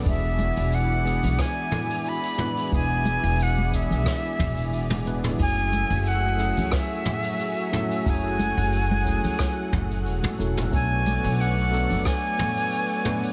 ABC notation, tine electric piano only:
X:1
M:4/4
L:1/8
Q:"Swing 16ths" 1/4=90
K:F#m
V:1 name="Tine electric piano"
[E,G,B,DG]3 [E,G,B,DG]4 [E,G,B,DB] | [E,G,B,DG]3 [E,G,B,DG]4 [E,G,B,DB] | [F,A,CEG]3 [F,A,CEG]4 [F,A,CEA] | [F,A,CEG]3 [F,A,CEG]4 [F,A,CEA] |
[F,A,B,DA]3 [F,A,B,DA]4 [F,A,B,DB] |]